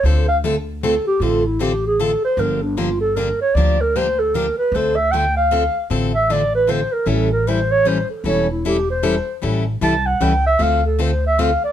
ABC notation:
X:1
M:3/4
L:1/16
Q:"Swing" 1/4=153
K:Dm
V:1 name="Clarinet"
c2 f2 z4 A2 G2 | F2 E2 G2 ^G2 A2 c2 | B2 D2 F2 A2 B2 ^c2 | d2 B2 c2 A2 B2 =B2 |
c2 e2 g2 f6 | z2 e2 d2 =B2 c2 _B2 | A2 B2 ^B2 ^c2 B2 A2 | ^c2 E2 G2 ^B6 |
z4 a2 ^f2 g2 e2 | f2 A2 c2 e2 f2 d2 |]
V:2 name="Steel-string acoustic guitar"
[D,A,CFA]2 z2 [D,A,CFA] z3 [D,A,CFA] z3 | [D,A,CFA]2 z2 [D,A,CFA] z3 [D,A,CFA] z3 | [D,F,B,DG]2 z2 [D,F,B,DG] z3 [D,F,B,DG] z3 | [D,F,B,DG]2 z2 [D,F,B,DG] z3 [D,F,B,DG] z3 |
[D,A,CFA]2 z2 [D,A,CFA] z3 [D,A,CFA] z3 | [D,A,CFA]2 z2 [D,A,CFA] z3 [D,A,CFA] z3 | [E,G,^CEA]2 z2 [E,G,CEA] z3 [E,G,CEA] z3 | [E,G,^CEA]2 z2 [E,G,CEA] z3 [E,G,CEA] z3 |
[E,G,^CEA]2 z2 [E,G,CEA] z3 [E,G,CEA] z3 | [D,A,CFA]2 z2 [D,A,CFA] z3 [D,A,CFA] z3 |]
V:3 name="Upright bass" clef=bass
D,,12 | A,,,12 | G,,,12 | D,,12 |
D,,12 | A,,,12 | A,,,12 | E,,,12 |
A,,,4 ^B,,,4 ^C,,4 | D,,12 |]